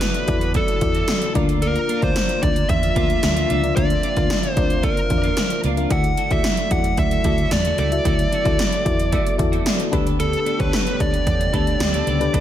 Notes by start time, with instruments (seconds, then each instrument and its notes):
Already playing: fm electric piano D3 E4 F#4 A4 D5, analog synth pad D3 F#3 B3 E4, lead electric guitar B4
0.01 muted clean electric guitar stroke, snare, closed hi-hat
0.14 muted clean electric guitar stroke, closed hi-hat
0.27 fingered electric bass E2, fm electric piano E4 F#4 A4 D5, kick, closed hi-hat
0.41 muted clean electric guitar stroke, closed hi-hat
0.54 clean electric guitar A3 E4 F#4, lead electric guitar A4, kick, closed hi-hat
0.68 muted clean electric guitar stroke, closed hi-hat
0.81 fingered electric bass E2, fm electric piano E4 F#4 A4 D5, kick, closed hi-hat
0.95 clean electric guitar A3 E4 F#4, closed hi-hat
1.08 muted clean electric guitar stroke, snare, closed hi-hat
1.22 muted clean electric guitar stroke, closed hi-hat
1.34 fingered electric bass D2, fm electric piano D3 D4 F4 A#4 D5, analog synth pad F3 A#3 F4, clean electric guitar A#3 D4 F4, kick, closed hi-hat
1.49 clean electric guitar A#3 D4 F4, closed hi-hat
1.62 clean electric guitar A#3 D4 F4, lead electric guitar A#4, closed hi-hat
1.76 muted clean electric guitar stroke, closed hi-hat
1.89 clean electric guitar A#3 D4 F4, closed hi-hat
2.01 fingered electric bass D2, clean electric guitar A#3 D4 F4, fm electric piano D4 F4 A#4 D5, lead electric guitar C5, kick, closed hi-hat
2.16 muted clean electric guitar stroke, snare, closed hi-hat
2.29 muted clean electric guitar stroke, closed hi-hat
2.42 fingered electric bass D2, fm electric piano D4 F4 A#4 D5, lead electric guitar D5, kick, closed hi-hat
2.55 muted clean electric guitar stroke, closed hi-hat
2.69 fingered electric bass E2, lead electric guitar E5, muted clean electric guitar stroke, kick, closed hi-hat
2.82 muted clean electric guitar stroke, closed hi-hat
2.95 fingered electric bass D2, clean electric guitar A#3 D4 F4, fm electric piano D4 F4 A#4 D5, kick, closed hi-hat
3.09 clean electric guitar A#3 D4 F4, closed hi-hat
3.23 fingered electric bass D2, muted clean electric guitar stroke, snare, closed hi-hat
3.36 clean electric guitar A#3 D4 F4, closed hi-hat
3.49 fingered electric bass C#2, fm electric piano D3, clean electric guitar A#3 D4 F4, analog synth pad C4, closed hi-hat
3.63 fm electric piano D4 F4 A#4 D5, muted clean electric guitar stroke, closed hi-hat
3.76 fingered electric bass D2, clean electric guitar A#3 D4 F4, fm electric piano D4 F4 A#4 E5, lead electric guitar D5, kick, closed hi-hat
3.90 muted clean electric guitar stroke, closed hi-hat
4.03 clean electric guitar A#3 D4 F4, closed hi-hat
4.16 fingered electric bass D2, clean electric guitar A#3 D4 F4, fm electric piano D4 F4 A#4 F5, kick, closed hi-hat
4.30 muted clean electric guitar stroke, snare, closed hi-hat
4.43 muted clean electric guitar stroke, closed hi-hat
4.53 fingered electric bass D2, fm electric piano D4 F4 A#4, lead electric guitar C5, kick, closed hi-hat
4.58 fm electric piano D5
4.70 muted clean electric guitar stroke, closed hi-hat
4.83 clean electric guitar A#3 D4 F4, lead electric guitar A#4, kick, closed hi-hat
4.97 muted clean electric guitar stroke, closed hi-hat
5.10 fingered electric bass E2, fm electric piano D4 F4 A#4 C5, muted clean electric guitar stroke, kick, closed hi-hat
5.18 fm electric piano D5
5.24 clean electric guitar A#3 D4 F4, closed hi-hat
5.37 muted clean electric guitar stroke, snare, closed hi-hat
5.50 muted clean electric guitar stroke, closed hi-hat
5.64 fingered electric bass C#2, clean electric guitar A#3 D4 F4, closed hi-hat
5.77 clean electric guitar A#3 D4 F4, fm electric piano D4 F4 A#4 F5, closed hi-hat
5.90 fingered electric bass D2, fm electric piano D3 E4 F#4 A4 D5, analog synth pad F#3 A3 E4, clean electric guitar A3 E4 F#4, lead electric guitar F#5, kick, closed hi-hat
6.04 muted clean electric guitar stroke, closed hi-hat
6.17 clean electric guitar A3 E4 F#4, closed hi-hat
6.30 fingered electric bass D2, clean electric guitar A3 E4 F#4, fm electric piano E4 F#4 A4 D5, lead electric guitar E5, kick, closed hi-hat
6.44 muted clean electric guitar stroke, snare, closed hi-hat
6.57 muted clean electric guitar stroke, closed hi-hat
6.71 fingered electric bass E2, fm electric piano E4 F#4 A4 D5, lead electric guitar F#5, kick, closed hi-hat
6.84 muted clean electric guitar stroke, closed hi-hat
6.97 fingered electric bass D2, lead electric guitar E5, muted clean electric guitar stroke, kick, closed hi-hat
7.11 muted clean electric guitar stroke, closed hi-hat
7.24 fingered electric bass D2, clean electric guitar A3 E4 F#4, fm electric piano E4 F#4 A4 D5, kick, closed hi-hat
7.38 clean electric guitar A3 E4 F#4, closed hi-hat
7.51 fingered electric bass E2, lead electric guitar D5, muted clean electric guitar stroke, snare, closed hi-hat
7.65 clean electric guitar A3 E4 F#4, closed hi-hat
7.78 fingered electric bass C#2, clean electric guitar A3 E4 F#4, lead electric guitar D5, closed hi-hat
7.91 fm electric piano E4 F#4 A4 E5, muted clean electric guitar stroke, closed hi-hat
8.04 fingered electric bass D2, fm electric piano D3 E4 F#4 A4 D5, clean electric guitar A3 E4 F#4, analog synth pad B3, kick, closed hi-hat
8.19 muted clean electric guitar stroke, closed hi-hat
8.32 clean electric guitar A3 E4 F#4, closed hi-hat
8.45 fingered electric bass D2, clean electric guitar A3 E4 F#4, fm electric piano E4 F#4 A4 D5, kick, closed hi-hat
8.59 muted clean electric guitar stroke, snare, closed hi-hat
8.72 muted clean electric guitar stroke, closed hi-hat
8.85 fingered electric bass E2, fm electric piano E4 F#4 A4 D5, kick, closed hi-hat
8.99 muted clean electric guitar stroke, closed hi-hat
9.12 clean electric guitar A3 E4 F#4, kick, closed hi-hat
9.26 muted clean electric guitar stroke, closed hi-hat
9.38 fingered electric bass E2, fm electric piano E4 F#4 A4 D5, muted clean electric guitar stroke, kick, closed hi-hat
9.52 clean electric guitar A3 E4 F#4, closed hi-hat
9.66 muted clean electric guitar stroke, snare, closed hi-hat
9.79 muted clean electric guitar stroke, closed hi-hat
9.91 fingered electric bass D2, fm electric piano D3 D4 G4 A4 B4, analog synth pad A3 G4, clean electric guitar B3 D4 A4, kick, closed hi-hat
10.06 clean electric guitar B3 D4 A4, closed hi-hat
10.19 clean electric guitar B3 D4 A4, lead electric guitar A4, closed hi-hat
10.33 muted clean electric guitar stroke, closed hi-hat
10.46 clean electric guitar B3 D4 A4, closed hi-hat
10.59 fingered electric bass D2, clean electric guitar B3 D4 A4, fm electric piano D4 G4 A4 C#5, lead electric guitar B4, kick, closed hi-hat
10.73 snare, closed hi-hat
10.86 muted clean electric guitar stroke, closed hi-hat
10.99 fingered electric bass D2, fm electric piano D4 G4 A4 B4, lead electric guitar D5, kick, closed hi-hat
11.13 muted clean electric guitar stroke, closed hi-hat
11.26 fingered electric bass E2, muted clean electric guitar stroke, kick, closed hi-hat
11.40 muted clean electric guitar stroke, closed hi-hat
11.52 fingered electric bass D2, clean electric guitar B3 D4 A4, fm electric piano D4 G4 A4 B4, kick, closed hi-hat
11.66 clean electric guitar B3 D4 A4, closed hi-hat
11.80 fingered electric bass D2, muted clean electric guitar stroke, snare, closed hi-hat
11.93 clean electric guitar B3 D4 A4, closed hi-hat
12.06 fingered electric bass C#2, fm electric piano D3, clean electric guitar B3 D4 A4, closed hi-hat
12.20 fm electric piano D4 G4 A4 B4, muted clean electric guitar stroke, closed hi-hat
12.33 fingered electric bass D2, clean electric guitar B3 D4 A4, fm electric piano D4 G4 A4 B4, kick, closed hi-hat